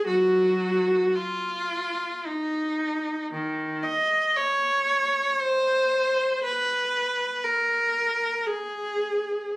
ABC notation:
X:1
M:3/4
L:1/8
Q:1/4=57
K:Abmix
V:1 name="Viola"
[G,G]2 F2 E2 | E, e d2 c2 | _c2 B2 A2 |]